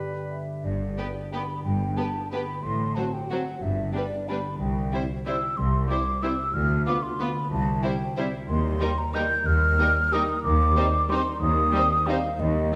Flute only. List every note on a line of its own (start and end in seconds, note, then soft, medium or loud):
0.29 0.66 E5 soft
0.65 1.35 D5 soft
1.34 1.63 B5 medium
1.64 1.99 G5 medium
1.97 2.32 A5 medium
2.32 2.64 B5 medium
2.63 2.97 C6 medium
2.95 3.15 A5 medium
3.13 3.31 G5 medium
3.30 3.64 F#5 soft
3.62 3.94 E5 medium
3.94 4.30 D5 medium
4.28 4.59 B5 medium
4.60 5.04 G5 medium
5.27 5.59 E6 medium
5.57 5.89 C6 medium
5.90 6.24 D6 medium
6.23 6.55 E6 medium
6.54 6.86 F6 medium
6.87 7.04 D6 medium
7.03 7.23 C6 medium
7.21 7.51 B5 medium
7.52 7.84 A5 medium
7.83 8.17 G5 medium
8.48 9.00 C6 medium
8.98 9.16 A#5 medium
9.14 9.48 G6 medium
9.46 10.14 F6 medium
10.13 10.43 D#6 medium
10.44 11.11 D6 medium
11.10 11.42 C6 medium
11.42 12.08 D#6 medium
12.07 12.41 F5 medium
12.40 12.75 D#5 medium